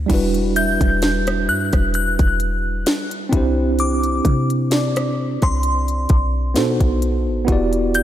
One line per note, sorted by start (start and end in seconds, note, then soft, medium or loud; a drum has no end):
0.06 0.78 E1 loud
0.06 3.27 G3 medium
0.06 3.28 D4 medium
0.06 3.29 E4 medium
0.06 kick loud
0.06 closed hi-hat medium
0.06 crash loud
0.12 3.30 F#4 medium
0.12 3.31 B4 medium
0.34 closed hi-hat soft
0.56 3.32 E5 medium
0.56 1.44 G6 loud
0.56 closed hi-hat medium
0.81 1.50 E1 loud
0.81 kick loud
0.81 closed hi-hat medium
1.02 snare loud
1.02 closed hi-hat medium
1.27 cross-stick loud
1.27 closed hi-hat medium
1.48 1.72 G2 medium
1.48 1.94 F#6 loud
1.73 2.17 E1 loud
1.73 kick medium
1.73 cross-stick medium
1.73 closed hi-hat soft
1.94 3.85 F#6 loud
1.94 closed hi-hat medium
2.19 2.84 E1 loud
2.19 kick loud
2.19 closed hi-hat soft
2.40 closed hi-hat medium
2.86 snare loud
2.86 closed hi-hat medium
3.11 closed hi-hat medium
3.29 4.21 C2 loud
3.29 6.50 C4 medium
3.29 6.51 D4 medium
3.29 6.52 E4 medium
3.29 kick loud
3.29 closed hi-hat medium
3.35 6.53 G4 medium
3.35 6.54 C5 medium
3.79 5.48 D6 medium
3.79 closed hi-hat medium
4.03 closed hi-hat soft
4.25 5.38 C3 loud
4.25 kick loud
4.25 closed hi-hat medium
4.50 closed hi-hat medium
4.71 6.98 D5 medium
4.71 snare loud
4.71 closed hi-hat medium
4.96 cross-stick loud
4.96 closed hi-hat medium
5.42 6.07 C2 loud
5.42 6.98 C6 medium
5.42 kick medium
5.42 cross-stick medium
5.42 closed hi-hat soft
5.63 closed hi-hat medium
5.88 closed hi-hat soft
6.09 6.57 B1 loud
6.09 kick loud
6.09 closed hi-hat medium
6.54 6.79 B2 medium
6.54 7.44 B3 medium
6.54 7.48 D#4 medium
6.54 7.47 F#4 medium
6.54 7.49 A4 medium
6.54 7.49 C5 medium
6.54 snare loud
6.54 closed hi-hat medium
6.80 7.28 B1 loud
6.80 kick medium
6.80 closed hi-hat soft
7.02 closed hi-hat medium
7.27 7.47 A1 loud
7.45 8.03 E1 loud
7.45 8.03 B3 medium
7.45 8.03 E4 medium
7.45 8.03 F#4 medium
7.45 kick loud
7.45 closed hi-hat medium
7.50 8.03 G4 medium
7.50 8.03 D5 medium
7.73 closed hi-hat soft
7.94 8.03 G6 loud
7.94 closed hi-hat medium